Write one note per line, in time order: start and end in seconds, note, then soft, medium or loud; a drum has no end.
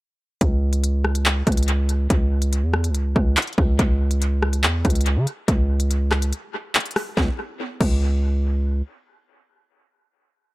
0.41 1.43 C#2 loud
0.41 kick loud
0.41 closed hi-hat loud
0.73 closed hi-hat medium
0.84 closed hi-hat medium
1.04 cross-stick medium
1.15 closed hi-hat medium
1.26 clap loud
1.47 2.08 C#2 loud
1.47 kick medium
1.47 closed hi-hat medium
1.52 closed hi-hat medium
1.57 closed hi-hat medium
1.63 closed hi-hat medium
1.68 closed hi-hat medium
1.89 closed hi-hat medium
2.10 2.64 C#2 loud
2.10 kick loud
2.10 closed hi-hat loud
2.42 closed hi-hat medium
2.53 closed hi-hat loud
2.63 2.91 E2 loud
2.74 cross-stick loud
2.84 closed hi-hat medium
2.89 3.14 C#2 loud
2.95 closed hi-hat medium
3.16 3.36 C#2 loud
3.16 kick medium
3.37 clap loud
3.37 closed hi-hat medium
3.42 closed hi-hat medium
3.47 closed hi-hat medium
3.53 closed hi-hat soft
3.58 3.78 C#2 loud
3.58 kick loud
3.79 4.65 C#2 loud
3.79 kick loud
3.79 closed hi-hat loud
4.11 closed hi-hat medium
4.22 closed hi-hat medium
4.42 cross-stick loud
4.53 closed hi-hat medium
4.64 4.84 E2 loud
4.64 clap loud
4.85 5.18 C#2 loud
4.85 kick medium
4.85 closed hi-hat medium
4.90 closed hi-hat medium
4.95 closed hi-hat medium
5.01 closed hi-hat medium
5.06 closed hi-hat medium
5.16 5.27 C#3 loud
5.27 closed hi-hat medium
5.48 6.33 C#2 loud
5.48 kick loud
5.48 closed hi-hat loud
5.80 closed hi-hat medium
5.91 closed hi-hat loud
6.11 cross-stick loud
6.11 clap medium
6.22 closed hi-hat medium
6.33 closed hi-hat medium
6.75 clap loud
6.75 closed hi-hat medium
6.80 closed hi-hat medium
6.86 closed hi-hat medium
6.91 closed hi-hat medium
6.96 cross-stick loud
6.96 open hi-hat medium
7.17 7.29 C#2 loud
7.17 kick loud
7.17 snare medium
7.81 8.82 C#2 loud
7.81 kick loud
7.81 crash medium